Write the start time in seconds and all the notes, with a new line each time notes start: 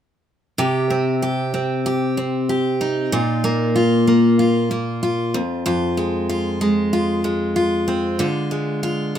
0.58 C3 G4
0.90 C4
1.22 G4
1.54 C4
1.86 G4
2.17 C4
2.49 G4
2.81 D#4
3.12 A#2 F4
3.44 A#3
3.76 F4
4.07 A#3
4.39 F4
4.71 A#3
5.03 F4
5.34 F2
5.66 F2 F4
5.97 G#3
6.29 F4
6.61 G#3
6.93 F4
7.24 G#3
7.56 F4
7.88 C4
8.19 D3 F4
8.51 G#3
8.83 F4
9.15 G#3